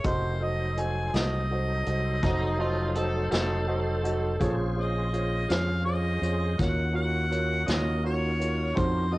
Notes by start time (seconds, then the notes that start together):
0.04 F1 C#4 E4 F#4 G4 A4 A#4 C5 D#5, kick, closed hi-hat
0.39 F#3 D#4 F#4 A4 C5 D#5
0.44 D#5
0.77 F#4 A4 C5 D#5 G#5, closed hi-hat
1.13 C2 F#4 A4 C5 D#5, snare, closed hi-hat
1.51 F#4 A4 C5 D#5
1.86 C2 F#4 A4 C5 D#5, closed hi-hat
2.23 F1 D#4 F#4 A4 C5 D#5, kick, snare, closed hi-hat
2.59 F4 F#4 A4 C5 D#5
2.95 F#4 A4 C5 D#5, closed hi-hat
3.30 F1 F#4 A4 C5 D#5, snare, closed hi-hat
3.67 F#4 A4 C5 D#5
4.03 F#4 A4 C5 D#5, closed hi-hat
4.39 A#1 C#4 F4 G#4 C5 C#5, kick, closed hi-hat
4.76 F4 G#4 C5 C#5 D#5
5.13 F4 G#4 C5 C#5, closed hi-hat
5.48 F2 F4 G#4 C5 C#5 F5, snare, closed hi-hat
5.84 F4 G#4 C5 C#5 D#5
6.21 F2 F4 G#4 C5 C#5, closed hi-hat
6.58 D#2 C#4 D#4 F4 F#4 A#4 C#5 F#5, kick, snare, closed hi-hat
6.93 F4 F#4 A#4 C#5 F#5
7.30 F4 F#4 A#4 C#5, closed hi-hat
7.66 D#2 F4 F#4 A#4 C#5 D#5, snare, closed hi-hat
8.03 F4 F#4 A#4 C#5
8.38 F4 F#4 A#4 C#5, closed hi-hat
8.75 F2 C#4 D#4 E4 F#4 G4 A4 A#4 C5, kick, closed hi-hat
9.11 D#3 C4 D#4 F#4 A4 D#5